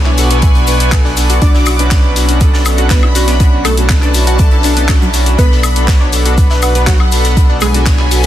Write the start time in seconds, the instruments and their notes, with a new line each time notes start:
Already playing: sub bass B1, supersaw synth B2 B3 D4 C#5, synth pluck G#3 G#4, ambient pad E4 D5 F#5 C#6, violin section G#5, synth texture B5
0.06 synth arpeggio sound E4 E5, clap
0.18 supersaw synth B2 B3 D4 A4, synth arpeggio sound F#4 F#5, closed hi-hat, open hi-hat, shaker
0.30 supersaw synth B2 B3 D4 A4, synth arpeggio sound B3 B4, closed hi-hat, shaker
0.42 supersaw synth B2 B3 D4 B4, synth arpeggio sound B3 B4, kick, closed hi-hat, shaker
0.55 supersaw synth B2 B3 D4 B4, closed hi-hat
0.67 supersaw synth B2 B3 D4 B4, closed hi-hat, open hi-hat, shaker
0.80 supersaw synth B2 B3 D4 B4, closed hi-hat, shaker
0.92 supersaw synth B2 D4 A4, synth arpeggio sound B3 B4, kick, clap, closed hi-hat, high woodblock, shaker
1.05 synth arpeggio sound D4 D5, snare
1.17 supersaw synth B3 D4 A4, closed hi-hat, open hi-hat, shaker
1.30 synth arpeggio sound F#4 F#5, closed hi-hat, shaker
1.42 sub bass B1, supersaw synth B2 C#4 D4 F#4, synth pluck D4 D5, ambient pad D5, violin section D6, kick, closed hi-hat, shaker
1.54 supersaw synth B2 C#4 D4 F#4, synth arpeggio sound E4 E5, snare
1.66 synth arpeggio sound F#4 F#5, closed hi-hat, open hi-hat, high woodblock, shaker
1.79 supersaw synth B2 C#4 D4 F#4, synth arpeggio sound B3 B4, closed hi-hat, shaker
1.91 supersaw synth B2 C#4 D4 B4, synth arpeggio sound B3 B4, kick, snare, clap, closed hi-hat, shaker
2.16 supersaw synth B2 C#4 D4 F#4, closed hi-hat, open hi-hat, shaker
2.29 supersaw synth B2 C#4 D4 F#4, closed hi-hat, shaker
2.40 supersaw synth B2 A4, synth arpeggio sound B3 B4, kick, closed hi-hat, shaker
2.54 supersaw synth B2 C#4 D4 A4, synth arpeggio sound D4 D5, snare
2.65 supersaw synth B2 C#4 D4 A4, closed hi-hat, open hi-hat, high woodblock, shaker
2.78 supersaw synth B2 C#4 D4 A4, synth arpeggio sound F#4 F#5, closed hi-hat, shaker
2.90 synth pluck B3 B4, violin section B5, kick, snare, clap, closed hi-hat, shaker
3.03 synth arpeggio sound E4 E5, high woodblock
3.15 supersaw synth B2 C#4 D4 F#4, synth arpeggio sound F#4 F#5, closed hi-hat, open hi-hat, shaker
3.28 synth arpeggio sound B3 B4, snare, closed hi-hat, shaker
3.40 supersaw synth B2 C#4 D4 F#4, synth arpeggio sound B3 B4, ambient pad B5, kick, closed hi-hat, shaker
3.53 supersaw synth B2 C#4 D4 F#4
3.65 synth pluck A3 A4, violin section A5, closed hi-hat, open hi-hat, high woodblock, shaker
3.77 supersaw synth B2 C#4 D4 F#4, closed hi-hat, shaker
3.89 supersaw synth B2 B4, synth arpeggio sound B3 B4, kick, snare, clap, closed hi-hat, shaker
4.02 synth arpeggio sound D4 D5, clap, shaker
4.14 supersaw synth B2 C#4 D4 F#4, closed hi-hat, open hi-hat, shaker
4.27 supersaw synth B2 C#4 D4 F#4, synth arpeggio sound F#4 F#5, closed hi-hat, shaker
4.39 supersaw synth C#4 D4 A4, kick, closed hi-hat, shaker
4.51 supersaw synth B2 C#4 D4 A4, synth arpeggio sound E4 E5, closed hi-hat
4.63 supersaw synth B2 C#4 D4 A4, synth arpeggio sound D4 D5, closed hi-hat, open hi-hat, shaker
4.77 supersaw synth B2 C#4 D4 A4, synth arpeggio sound B3 B4, closed hi-hat, shaker
4.88 supersaw synth B2 C#4 D4, synth arpeggio sound A3 A4, kick, snare, clap, closed hi-hat, high woodblock, shaker
5.02 synth arpeggio sound F#3 F#4, shaker
5.14 supersaw synth C#4 D4 F#4, closed hi-hat, open hi-hat, shaker
5.26 closed hi-hat, shaker
5.38 sub bass B1, supersaw synth B2 B3 D4 A4, synth pluck B3 B4, synth arpeggio sound B3 B4, ambient pad B4 F#5, violin section B5, kick, closed hi-hat, shaker
5.51 supersaw synth B2 B3 D4 A4, snare
5.63 closed hi-hat, open hi-hat, high woodblock, shaker
5.76 supersaw synth B2 B3 D4 A4, closed hi-hat, shaker
5.88 supersaw synth B2 B3, synth arpeggio sound B3 B4, kick, snare, clap, closed hi-hat, shaker
6.01 synth arpeggio sound D4 D5
6.12 supersaw synth B2 B3 D4 A4, closed hi-hat, open hi-hat, shaker
6.25 supersaw synth B2 B3 D4 A4, synth arpeggio sound F#4 F#5, closed hi-hat, shaker
6.38 supersaw synth B2 D4 B4, kick, closed hi-hat, shaker
6.50 supersaw synth B2 B3 D4 B4, synth arpeggio sound E4 E5, snare
6.62 supersaw synth B2 B3 D4 B4, synth arpeggio sound F#4 F#5, closed hi-hat, open hi-hat, high woodblock, shaker
6.75 supersaw synth B2 B3 D4 B4, synth arpeggio sound B3 B4, closed hi-hat, shaker
6.87 synth pluck F#3 F#4, synth arpeggio sound B3 B4, violin section F#5, kick, snare, clap, closed hi-hat, shaker
7.00 high woodblock
7.12 supersaw synth B2 B3 D4 A4, closed hi-hat, open hi-hat, shaker
7.24 snare, closed hi-hat, shaker
7.37 synth arpeggio sound B3 B4, kick, closed hi-hat, shaker
7.49 supersaw synth B2 B3 D4 A4, synth arpeggio sound D4 D5
7.61 synth pluck G#3 G#4, violin section G#5, closed hi-hat, open hi-hat, high woodblock, shaker
7.74 supersaw synth B2 B3 D4 A4, synth arpeggio sound F#4 F#5, closed hi-hat, shaker
7.86 supersaw synth B2 B3 D4 C#5, kick, snare, clap, closed hi-hat, shaker
7.99 synth arpeggio sound E4 E5, clap
8.11 supersaw synth B2 B3 D4 A4, synth arpeggio sound F#4 F#5, closed hi-hat, open hi-hat, shaker
8.23 shaker